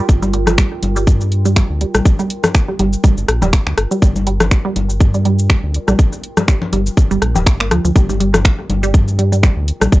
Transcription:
Already playing: ambient pad F4 A#4 G5
0.09 analog synth bass G1, kick, cabasa
0.22 synth arpeggio sound G3, high conga, cabasa
0.33 synth arpeggio sound G3, closed hi-hat
0.47 cross-stick, low conga, cabasa
0.58 synth arpeggio sound G3, finger snap, kick, closed hi-hat, cabasa
0.83 analog synth bass G1, closed hi-hat, high conga
0.96 synth arpeggio sound G3, cabasa
1.07 analog synth bass G2, kick, cabasa
1.21 cabasa
1.32 closed hi-hat
1.45 synth arpeggio sound G3, cabasa
1.56 synth arpeggio sound G3, finger snap, kick, cabasa
1.70 analog synth bass D2
1.81 synth arpeggio sound G3, closed hi-hat
1.95 analog synth bass A#1, cross-stick, high conga, cabasa
2.05 kick, cabasa
2.19 synth arpeggio sound G3, cabasa
2.30 closed hi-hat
2.44 cross-stick, low conga, cabasa
2.55 finger snap, kick, closed hi-hat, cabasa
2.68 synth arpeggio sound G3
2.79 analog synth bass G1, synth arpeggio sound G3, closed hi-hat, high conga
2.93 cabasa
3.04 synth arpeggio sound G3, kick, cabasa
3.18 analog synth bass G1, cabasa
3.28 analog synth bass A#1, cross-stick, closed hi-hat
3.42 analog synth bass D1, synth arpeggio sound G3, low conga, cabasa
3.53 finger snap, kick, cabasa
3.67 analog synth bass D2, finger snap
3.78 analog synth bass G1, cross-stick, closed hi-hat
3.91 synth arpeggio sound G3, cabasa
4.02 analog synth bass G1, synth arpeggio sound G3, kick, cabasa
4.16 high conga, cabasa
4.27 synth arpeggio sound G3, closed hi-hat
4.40 cross-stick, low conga, cabasa
4.51 finger snap, kick, closed hi-hat, cabasa
4.65 synth arpeggio sound G3
4.76 analog synth bass G1, closed hi-hat, high conga
4.90 cabasa
5.00 analog synth bass G2, kick, cabasa
5.14 synth arpeggio sound G3, cabasa
5.25 synth arpeggio sound G3, closed hi-hat
5.39 cabasa
5.50 synth arpeggio sound G3, finger snap, kick, cabasa
5.63 analog synth bass D2
5.74 closed hi-hat
5.88 analog synth bass A#1, synth arpeggio sound G3, cross-stick, high conga, cabasa
5.99 kick, cabasa
6.13 cabasa
6.23 closed hi-hat
6.37 synth arpeggio sound G3, cross-stick, low conga, cabasa
6.48 synth arpeggio sound G3, finger snap, kick, closed hi-hat, cabasa
6.62 low conga
6.73 analog synth bass G1, synth arpeggio sound G3, closed hi-hat, high conga
6.86 cabasa
6.97 kick, cabasa
7.11 analog synth bass G1, synth arpeggio sound G3, cabasa
7.22 analog synth bass A#1, cross-stick, closed hi-hat
7.36 analog synth bass D1, synth arpeggio sound G4, low conga, cabasa
7.46 analog synth bass G1, finger snap, kick, cabasa
7.60 synth arpeggio sound A#3, finger snap
7.71 analog synth bass D2, synth arpeggio sound F3, cross-stick, closed hi-hat
7.85 analog synth bass D2, synth arpeggio sound F3, cabasa
7.96 analog synth bass G1, synth arpeggio sound G3, kick, cabasa
8.09 synth arpeggio sound G3, high conga, cabasa
8.20 synth arpeggio sound G3, closed hi-hat
8.34 cross-stick, low conga, cabasa
8.45 finger snap, kick, closed hi-hat, cabasa
8.69 analog synth bass G1, closed hi-hat, high conga
8.83 synth arpeggio sound G3, cabasa
8.94 analog synth bass G2, kick, cabasa
9.08 cabasa
9.19 synth arpeggio sound G3, closed hi-hat
9.32 synth arpeggio sound G3, cabasa
9.43 synth arpeggio sound G3, finger snap, kick, cabasa
9.57 analog synth bass D2
9.68 closed hi-hat
9.81 analog synth bass A#1, cross-stick, high conga, cabasa
9.92 kick, cabasa

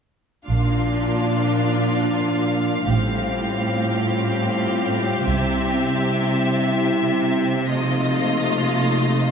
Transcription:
0.47 double bass section A#1, cello section A#2, french horn section F3 D4, viola section D4, violin section F4 F5
2.88 double bass section A1, cello section A2, french horn section G3 F4, viola section C4, violin section G4
5.29 double bass section C2, cello section C3, french horn section E4, violin section E5
7.70 french horn section F3 D#4, viola section A3, violin section F4 D#5

